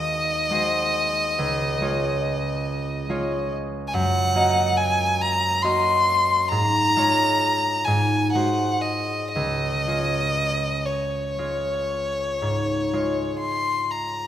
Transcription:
Already playing: D#2 G#3 F#4 G#4 C5 D#5
0.51 G#3 F#4 C5
1.39 C#2
1.81 G#3 F4 C#5
3.09 G#3 F4 C#5
3.88 G#5
3.94 F#2 F#5
4.35 A#3 F#4 D#5
4.77 G#5
5.22 A#5
5.62 A#3 F#4 D#5 C6
6.49 G#2 A#5
6.96 G#3 F4 C#5
7.85 G#2 G#5
8.33 G#3 F#4 C5 F#5
8.81 D#5
9.32 C#2 D#5
9.87 G#3 F4 C#5
10.86 C#5
11.38 G#3 F4 C#5
12.42 G#2
12.93 G#3 F4 C#5
13.39 C6
13.90 A#5

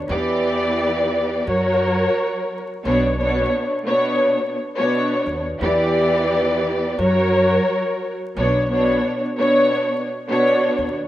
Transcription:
0.09 E2 E3 B3 G4 D5
1.47 F#2 F#3 F#4 A#4 C#5
2.85 B1 B2 B3 D4 C#5
3.19 B2 B3 D4 C#5
3.86 B2 B3 D4 C#5
4.77 B2 B3 D4 C#5
5.26 D#2
5.61 E2 E3 B3 G4 D5
6.99 F#2 F#3 F#4 A#4 C#5
8.37 B1 B2 B3 D4 C#5
8.70 B2 B3 D4 C#5
9.38 B2 B3 D4 C#5
10.29 B2 B3 D4 C#5
10.78 D#2

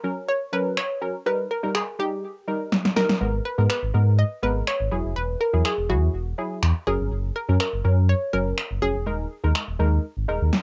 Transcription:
Already playing: A#4
0.04 F#3 C#4 A#4
0.29 C#5
0.53 F#3 C#4 A#4 B4
0.77 C#5, finger snap
1.01 F#3 C#4 A#4
1.26 G3 D#4 A#4 B4
1.51 A#4
1.63 G3 D#4 A#4
1.75 G#4, finger snap
1.99 G3 D#4 G4
2.48 G3 D#4 A#4
2.72 snare
2.85 snare
2.96 G3 D#4 A#4, snare
3.10 snare
3.21 G#1 G#3 B3 A#4
3.45 B4
3.58 G#2 G#3 B3 A#4
3.70 B4, finger snap
3.83 G#1
3.94 G#2 G#3 B3 A#4
4.19 D#5
4.43 G#1 G#3 B3 A#4 B4
4.67 C#5, finger snap
4.80 G#1
4.92 E1 F#3 E4 G#4
5.05 F1
5.16 E1 B4
5.41 A#4
5.53 E2 F#3 E4 G#4
5.65 G#4, finger snap
5.78 E1
5.89 E2 F#3 E4 F#4 G#4
6.14 E1
6.38 F#3 E4 G#4
6.62 E2, finger snap
6.87 F#1 F#3 C#4 G#4 A#4
7.00 G1
7.11 F#1
7.36 A#4
7.49 F#2 F#3 C#4 A#4
7.60 A#4, finger snap
7.73 F#1
7.84 F#2 F#3 C#4 A#4
8.09 C#5
8.33 F#1 F#3 C#4 A#4
8.58 finger snap
8.71 F#1
8.82 F1 F#3 C#4 G#4
8.95 E1
9.06 D#1 G#3 D#4 A#4
9.44 D#2 G#3 D#4 A#4
9.55 finger snap
9.68 D#1
9.79 D#2 G#3 D#4 A#4
10.17 G#1
10.28 D#1 G#3 D#4 A#4
10.42 D#2
10.53 snare

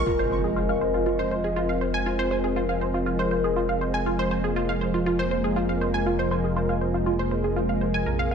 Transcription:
Already playing: F4 A#4 D#5 G#5
0.06 F1 F2 C3 F3 G#3 C4 F4, impact
0.19 C5
0.31 C5
0.44 G#4
0.56 F4
0.69 F5
0.81 C5
0.94 F4
1.06 F4
1.19 C5
1.31 C5
1.44 G#4
1.56 F4
1.69 F5
1.81 C5
1.94 G#5
2.06 F4
2.19 C5
2.31 C5
2.44 G#4
2.56 F4
2.69 F5
2.81 C5
2.94 F4
3.06 F4
3.19 C5
3.31 C5
3.44 G#4
3.56 F4
3.69 F5
3.81 C5
3.94 G#5
4.06 A#3 F4
4.19 C5
4.31 C5
4.44 G#4
4.56 F4
4.69 F5
4.81 C5
4.94 F4
5.06 F4
5.19 C5
5.31 C5
5.44 G#4
5.56 F4
5.69 F5
5.81 C5
5.94 G#5
6.06 F4
6.19 C5
6.31 C5
6.44 G#4
6.56 F4
6.69 F5
6.81 C5
6.94 F4
7.06 F4
7.19 C5
7.31 C5
7.44 G#4
7.56 F4
7.69 F5
7.81 C5
7.94 G#5
8.06 A#1 A#3 F4 A#4
8.19 F5
8.31 F5

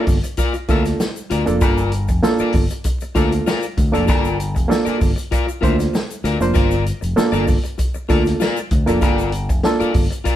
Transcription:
Already playing: A#3 D4 F4 A4
0.07 G1, muted clean electric guitar stroke, kick, open hi-hat, shaker
0.24 muted clean electric guitar stroke, closed hi-hat, shaker
0.37 F4 A#4 D5, kick, closed hi-hat, shaker
0.54 muted clean electric guitar stroke, closed hi-hat, shaker
0.68 D2 A#3 D4 F4 A4 A#4 E5, kick, closed hi-hat, shaker
0.85 muted clean electric guitar stroke, snare, closed hi-hat, shaker
1.00 muted clean electric guitar stroke, snare, shaker
1.16 closed hi-hat, shaker
1.30 D2 F4 A#4 D5, closed hi-hat, shaker
1.46 F1 A#3 D4 F4 A4, muted clean electric guitar stroke, closed hi-hat, shaker
1.61 G1 F4 A#4 D5, kick, closed hi-hat, shaker
1.77 closed hi-hat, shaker
1.92 closed hi-hat, shaker
2.08 F1, muted clean electric guitar stroke, kick, closed hi-hat, shaker
2.23 A#3 D4 F4 A4, muted clean electric guitar stroke, snare, shaker
2.39 F4 A#4 D5, muted fingered electric bass stroke, shaker
2.53 G1, muted clean electric guitar stroke, kick, open hi-hat, shaker
2.70 muted clean electric guitar stroke, closed hi-hat, shaker
2.84 muted clean electric guitar stroke, kick, closed hi-hat, shaker
3.01 muted clean electric guitar stroke, closed hi-hat, shaker
3.15 D2 A#3 D4 F4 A4 A#4 D5, kick, closed hi-hat, shaker
3.32 muted clean electric guitar stroke, closed hi-hat, shaker
3.46 F4 A#4 D5, snare, shaker
3.62 closed hi-hat, shaker
3.77 D2, muted clean electric guitar stroke, kick, closed hi-hat, shaker
3.92 F1 A#3 D4 F4 A4 A#4 D5, closed hi-hat, shaker
4.07 G1 F4 A#4 D5, kick, closed hi-hat, shaker
4.25 closed hi-hat, shaker
4.40 closed hi-hat, shaker
4.55 F1, muted clean electric guitar stroke, kick, closed hi-hat, shaker
4.68 A#3 D4 F4 A4, muted clean electric guitar stroke, snare, shaker
4.85 F4 A#4 D5, muted fingered electric bass stroke, closed hi-hat, shaker
5.00 G1, muted clean electric guitar stroke, kick, open hi-hat, shaker
5.16 muted clean electric guitar stroke, closed hi-hat, shaker
5.31 F4 A#4 D5, kick, closed hi-hat, shaker
5.48 muted clean electric guitar stroke, closed hi-hat, shaker
5.61 D2 A#3 D4 F4 A#4 C5 E5, kick, closed hi-hat, shaker
5.79 muted clean electric guitar stroke, snare, closed hi-hat, shaker
5.93 muted clean electric guitar stroke, snare, shaker
6.10 closed hi-hat, shaker
6.24 D2 F4 A#4 D5, closed hi-hat, shaker
6.40 F1 A#3 D4 F4 C5, muted clean electric guitar stroke, closed hi-hat, shaker
6.54 G1 F4 A#4 D5, kick, closed hi-hat, shaker
6.71 closed hi-hat, shaker
6.86 closed hi-hat, shaker
7.01 F1, muted clean electric guitar stroke, closed hi-hat, shaker
7.16 A#3 D4 F4 A4, muted clean electric guitar stroke, snare, shaker
7.32 G1 F4 A#4 D5, closed hi-hat, shaker
7.47 muted clean electric guitar stroke, kick, open hi-hat, shaker
7.64 muted clean electric guitar stroke, closed hi-hat, shaker
7.78 muted clean electric guitar stroke, kick, closed hi-hat, shaker
7.94 muted clean electric guitar stroke, shaker
8.09 D2 A#3 D4 F4 A4 A#4 D5, kick, closed hi-hat, shaker
8.25 muted clean electric guitar stroke, snare, closed hi-hat, shaker
8.40 F4 A#4 D5, snare, shaker
8.56 closed hi-hat, shaker
8.71 D2, muted clean electric guitar stroke, kick, closed hi-hat, shaker
8.86 F1 A#3 D4 F4 A4 A#4 D5, closed hi-hat, shaker
9.01 G1 F4 A#4 D5, kick, closed hi-hat, shaker
9.18 closed hi-hat, shaker
9.32 closed hi-hat, shaker
9.49 F1, muted clean electric guitar stroke, kick, closed hi-hat, shaker
9.63 A#3 D4 F4 A4, muted clean electric guitar stroke, snare, shaker
9.80 F4 A#4 D5, muted fingered electric bass stroke, closed hi-hat, shaker
9.94 G1, muted clean electric guitar stroke, kick, open hi-hat, shaker
10.11 muted clean electric guitar stroke, closed hi-hat, shaker
10.24 F4 A#4 D5, kick, closed hi-hat, shaker

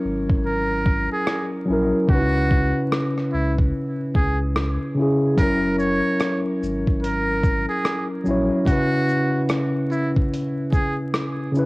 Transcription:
Already playing: F#3 C#4 E4 A#4
0.05 G#1
0.30 kick
0.46 A#4
0.86 kick
1.12 G#4
1.27 cross-stick
1.66 A#1 F#3 C#4
1.71 E4 A#4
2.07 C#2 C#3 C#4 F#4, kick
2.12 D#4 B4
2.19 E4
2.51 kick
2.92 cross-stick
3.18 cross-stick
3.33 C#2 E4
3.59 kick
4.15 C#2 G#4, kick
4.56 cross-stick
4.95 C#3 C#4
4.99 E4 G#4
5.36 F#1 F#3 C#4 A#4, kick, closed hi-hat
5.40 E4 A#4
5.79 C#5, shaker
6.20 cross-stick, closed hi-hat
6.63 G#1, shaker
6.87 kick
7.03 A#4, closed hi-hat
7.44 kick, shaker
7.69 G#4
7.85 cross-stick, closed hi-hat
8.24 A#1 F#3 C#4, shaker
8.29 E4 C#5
8.65 C#3 C#4 F#4, kick, closed hi-hat
8.70 E4 B4
9.08 shaker
9.49 cross-stick, closed hi-hat
9.91 E4, shaker
10.16 kick
10.33 closed hi-hat
10.72 G#4, kick, shaker
11.14 cross-stick, closed hi-hat
11.52 C#3 C#4, shaker
11.57 E4 B4

